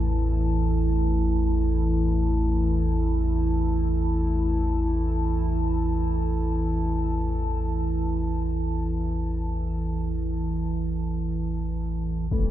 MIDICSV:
0, 0, Header, 1, 5, 480
1, 0, Start_track
1, 0, Tempo, 500000
1, 12007, End_track
2, 0, Start_track
2, 0, Title_t, "Analog synth pad"
2, 0, Program_c, 0, 89
2, 0, Note_on_c, 0, 52, 64
2, 0, Note_on_c, 0, 64, 90
2, 0, Note_on_c, 0, 69, 78
2, 0, Note_on_c, 0, 81, 78
2, 11809, Note_off_c, 0, 52, 0
2, 11820, Note_on_c, 0, 52, 69
2, 11823, Note_off_c, 0, 64, 0
2, 11826, Note_off_c, 0, 81, 0
2, 11831, Note_off_c, 0, 69, 0
2, 12007, Note_off_c, 0, 52, 0
2, 12007, End_track
3, 0, Start_track
3, 0, Title_t, "Singing bowl"
3, 0, Program_c, 1, 14
3, 0, Note_on_c, 1, 57, 62
3, 0, Note_on_c, 1, 69, 58
3, 11823, Note_off_c, 1, 57, 0
3, 11825, Note_off_c, 1, 69, 0
3, 11835, Note_on_c, 1, 57, 58
3, 11836, Note_on_c, 1, 69, 49
3, 12007, Note_off_c, 1, 57, 0
3, 12007, Note_off_c, 1, 69, 0
3, 12007, End_track
4, 0, Start_track
4, 0, Title_t, "Synth drone"
4, 0, Program_c, 2, 95
4, 0, Note_on_c, 2, 33, 76
4, 0, Note_on_c, 2, 40, 83
4, 11812, Note_off_c, 2, 40, 0
4, 11816, Note_off_c, 2, 33, 0
4, 11824, Note_on_c, 2, 40, 71
4, 11828, Note_on_c, 2, 33, 75
4, 12007, Note_off_c, 2, 33, 0
4, 12007, Note_off_c, 2, 40, 0
4, 12007, End_track
5, 0, Start_track
5, 0, Title_t, "Impact"
5, 0, Program_c, 3, 103
5, 11822, Note_on_c, 3, 60, 62
5, 12007, Note_off_c, 3, 60, 0
5, 12007, End_track
0, 0, End_of_file